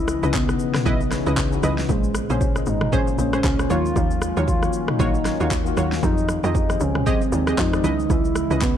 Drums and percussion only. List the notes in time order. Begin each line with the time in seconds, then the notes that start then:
0.08 cross-stick, low bongo, shaker
0.23 low bongo, shaker
0.34 kick, clap, high bongo, shaker
0.49 cross-stick, shaker
0.59 shaker
0.74 cross-stick, snare, mid tom, shaker
0.86 kick, low conga, shaker
1.01 low bongo, shaker
1.11 cross-stick, snare, shaker
1.26 low bongo, shaker
1.37 kick, clap, high bongo, shaker
1.52 shaker
1.63 cross-stick, low conga, shaker
1.78 snare, shaker
1.89 kick, low conga, shaker
2.04 shaker
2.15 cross-stick, low bongo, shaker
2.30 low bongo, shaker
2.41 kick, high bongo, shaker
2.56 cross-stick, shaker
2.66 shaker
2.81 cross-stick, mid tom
2.92 kick, low conga, shaker
3.07 low bongo, shaker
3.18 shaker
3.33 cross-stick, low bongo, shaker
3.44 kick, clap, high bongo, shaker
3.59 cross-stick, shaker
3.70 low conga, shaker
3.86 shaker
3.96 kick, low conga, shaker
4.11 shaker
4.22 cross-stick, low bongo, shaker
4.37 low bongo, shaker
4.48 kick, high bongo, shaker
4.63 cross-stick, shaker
4.73 shaker
4.88 cross-stick, mid tom
5.00 kick, low conga, shaker
5.14 low bongo, shaker
5.25 cross-stick, snare, shaker
5.40 low bongo, shaker
5.51 kick, clap, high bongo, shaker
5.66 shaker
5.77 cross-stick, low conga, shaker
5.92 snare, shaker
6.03 kick, low conga, shaker
6.18 shaker
6.29 cross-stick, low bongo, shaker
6.44 low bongo, shaker
6.55 kick, high bongo, shaker
6.70 cross-stick, shaker
6.80 shaker
6.95 cross-stick, mid tom
7.06 kick, low conga, shaker
7.21 low bongo, shaker
7.32 shaker
7.47 cross-stick, low bongo, shaker
7.58 kick, clap, high bongo, shaker
7.73 cross-stick, shaker
7.84 low conga, shaker
8.00 shaker
8.10 kick, low conga, shaker
8.25 shaker
8.35 cross-stick, low bongo, shaker
8.51 low bongo, shaker
8.61 kick, clap, high bongo, shaker